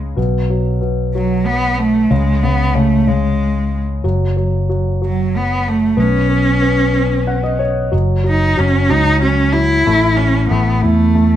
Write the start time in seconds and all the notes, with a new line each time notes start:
Already playing: C#2 C#3
0.16 B1 B2
0.50 F#3
0.81 B2
1.15 F#3
1.46 B3
1.74 B3
1.79 A3
2.11 C#2 C#3 G#3
2.43 C#3 B3
2.74 C#3 A3
3.07 C#3 G#3
4.04 F#1 F#3
4.37 F#3
4.69 F#3
5.02 F#3
5.37 B3
5.68 A3
5.97 B1 B3 C#4
6.29 B3
6.62 B3
6.94 B3
7.27 F#5
7.44 D#5
7.59 C#5
7.92 F#1 F#3
8.24 F#3
8.29 D#4
8.57 F#1 F#3 C#4
8.89 C#2 F#3 D#4
9.22 F#3 C#4
9.52 F#3 E4
9.87 A1 A3
10.17 C#4 E4
10.49 A1 A3 B3
10.81 E2 A3 E4
11.15 A3